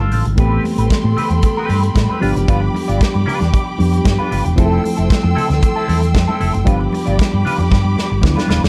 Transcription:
Already playing: F3 A3 C4 D4 E4
0.00 C4 F4 A4, muted conga, high conga
0.11 A1 C4 F4 A4, open hi-hat, low conga
0.25 G#1, closed hi-hat, low conga
0.36 A1 E3 A3 B3 C4 G4 A4 G5 B5 C6, kick, closed hi-hat
0.40 B4
0.52 muted conga
0.63 muted clean electric guitar stroke, open hi-hat, high conga
0.78 A1 C4 G4 B4, closed hi-hat
0.90 muted clean electric guitar stroke, kick, snare, closed hi-hat
1.04 A2, muted clean electric guitar stroke
1.17 C4 G4 B4, open hi-hat, low conga
1.30 E2, muted clean electric guitar stroke, closed hi-hat, high conga
1.43 muted clean electric guitar stroke, kick, closed hi-hat, muted conga
1.57 C4 G4 B4, muted conga
1.69 G2 C4 G4 B4, open hi-hat, high conga
1.83 muted clean electric guitar stroke, closed hi-hat
1.95 A2, muted clean electric guitar stroke, kick, snare, closed hi-hat, muted conga, high conga
2.09 C4 G4 B4, high conga
2.20 G1 F3 G3 B3 D4 F4 G4 B4 G5 D6, open hi-hat, low conga
2.35 F#1, muted clean electric guitar stroke, closed hi-hat, low conga
2.48 G1 D4 F4 B4, kick, closed hi-hat
2.62 muted clean electric guitar stroke, muted conga
2.74 muted clean electric guitar stroke, open hi-hat, high conga
2.88 G1 D4 F4 D5, closed hi-hat
3.01 kick, snare, closed hi-hat
3.14 G2, muted clean electric guitar stroke, muted conga
3.26 D4 F4 B4, open hi-hat, low conga
3.40 E2, muted clean electric guitar stroke, snare, closed hi-hat, high conga
3.52 muted clean electric guitar stroke, kick, closed hi-hat
3.66 muted clean electric guitar stroke
3.78 F2 F3 G3 B3 D4 G4, open hi-hat, high conga
3.93 muted clean electric guitar stroke, closed hi-hat
4.05 G2, muted clean electric guitar stroke, kick, snare, closed hi-hat, muted conga, high conga
4.19 D4 F4 B4, high conga
4.30 G1 D4 F4 B4, open hi-hat, low conga
4.45 E1, muted clean electric guitar stroke, closed hi-hat, low conga
4.56 F1 F3 A3 C4 E4 G#4 A4 C6 E6, kick, closed hi-hat, muted conga
4.65 A4
4.72 muted conga
4.83 muted clean electric guitar stroke, open hi-hat, high conga
4.97 F1 C4 E4 A4, closed hi-hat
5.10 kick, snare, closed hi-hat, muted conga
5.23 F2, muted clean electric guitar stroke, muted conga
5.35 C4 E4 A4, open hi-hat, low conga
5.49 D2, muted clean electric guitar stroke, snare, closed hi-hat, high conga
5.61 muted clean electric guitar stroke, kick, closed hi-hat, muted conga
5.76 C4 E4 A4, muted conga
5.88 E2 C4 E4 A4, open hi-hat, high conga
6.02 muted clean electric guitar stroke, closed hi-hat
6.14 F2, muted clean electric guitar stroke, kick, snare, closed hi-hat, muted conga, high conga
6.28 C4 E4 A4, muted conga, high conga
6.40 F1 C4 E4 A4, open hi-hat, low conga
6.54 F#1, muted clean electric guitar stroke, closed hi-hat, low conga
6.64 G1 F3 G3 B3 D4 F4 G4 B4 B5 D6, kick, closed hi-hat, muted conga
6.81 muted clean electric guitar stroke, muted conga
6.92 muted clean electric guitar stroke, open hi-hat, high conga
7.06 G1 D4 F4 D5, closed hi-hat
7.19 muted fingered electric bass stroke, kick, snare, closed hi-hat, muted conga
7.32 G2, muted clean electric guitar stroke
7.45 D4 F4 B4, open hi-hat, low conga
7.58 F2, muted clean electric guitar stroke, closed hi-hat, high conga
7.71 G2, muted clean electric guitar stroke, kick, snare, muted conga
7.84 G2, muted clean electric guitar stroke
7.96 snare, high conga
8.10 G1, muted clean electric guitar stroke
8.21 D2 F3 G3 B3 D4 E4, muted clean electric guitar stroke, kick, snare, muted conga, high conga
8.36 D4 F4 B4, snare, muted conga, high conga
8.48 D#1 D4 F4 B4, snare, low conga
8.62 E1, muted clean electric guitar stroke, snare, low conga

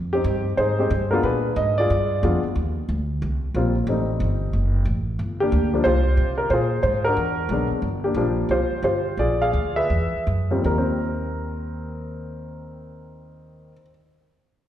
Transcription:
Already playing: F2
0.13 C4 D#4 G4
0.24 G2
0.57 G#2 D#4 G#4 C5
0.79 G#3 C4 D#4 G4
0.90 G2
1.11 G#3 B3 D4 F4 A#4
1.23 A#2 D4 G#4 B4
1.56 G#2 D#5
1.78 F4 G#4 D5
1.90 G2
2.23 F2 G#3 B3 D4 F4
2.44 muted upright bass stroke
2.55 D#2
2.89 D2
3.22 C2
3.54 A#1 G3 A#3 C4 F4
3.87 A1 G3 A3 C4 D#4
4.20 G1
4.53 F#1
4.85 A1
5.19 G1
5.40 A#3 D4 G4
5.52 D2
5.74 F3 G3 A#3 D4
5.84 C2 F4 G4 C5
6.17 C3
6.38 A#4
6.50 A#2 F4 G#4 C5
6.83 G#2 C5
7.04 D4 F#4 A#4
7.17 E2
7.49 B1 F#3 G#3 B3 D4
7.70 muted upright bass stroke
7.82 G1
8.04 A#3 D4 G4
8.14 A#1 F3 G3 A#3 D4
8.49 C2 F4 G4 C5
8.71 muted upright bass stroke
8.83 G1 F4 G4 C5
9.17 A#1 F4 G#4 D5
9.42 G#4 D5 F5
9.53 D2
9.76 G#4 B4 E5
9.90 E2
10.13 muted upright bass stroke
10.27 F#2
10.50 D#2 F3 G3 A#3 C4
10.61 D#2 D#3
10.66 A#4
10.70 G3
10.78 C4

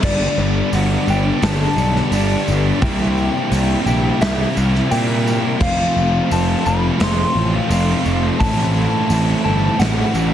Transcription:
0.03 G1 G2 D3 G3 B3 D4 G4 D5, kick, crash
0.37 G1, tambourine
0.72 G1 D3 G3 B3 D4 F#5, open hi-hat, tambourine
1.07 G1 G2 D3 G3 B3 D4 G4 G5, tambourine
1.41 G1 G2 D3 G3 B3 D4 A5, snare, open hi-hat, tambourine
1.75 B1 G3 B3 D4, tambourine
1.96 snare
2.10 G1 G2 D3 G3 B3 D4, open hi-hat, tambourine
2.15 G4
2.48 G1, tambourine
2.81 C2 C3 G3 A#3 C4 E4 G5, kick, open hi-hat
3.18 tambourine
3.50 C2 C3 G3 A#3 E4, open hi-hat, tambourine
3.86 A#1 C3 G3 C4 E4 G5, tambourine
4.20 C2 C3 G3 A#3 E4 E5, snare, open hi-hat, tambourine
4.55 C2 G3 A#3 E4, tambourine
4.75 snare
4.89 A#2 C3 G3 A#3 C4 E4 G5, open hi-hat, tambourine
5.27 tambourine
5.60 F1 F3 A3 C4 F4 F5, kick, crash
5.96 F1, tambourine
6.29 F1 F3 A3 C4 F4 A5, open hi-hat, tambourine
6.65 F1 F3 A3 C4 F4 B5, tambourine
7.00 F1 F3 A3 C4 F4 C6, snare, open hi-hat, tambourine
7.35 A1 A3 C4 F4
7.69 F1 F3 A3 C4 F4, open hi-hat, tambourine
8.05 F1, tambourine
8.39 A1 A2 E3 A3 C4 E4 A5, kick, open hi-hat, tambourine
9.10 A1 E3 A3 C4 E4, open hi-hat, tambourine
9.44 G1 A2 E3 A3 C4 E4 A5
9.79 A1 A2 E3 A3 C4 E4 F#5, snare, open hi-hat, tambourine
10.15 A1 A3 C4 E4, tambourine

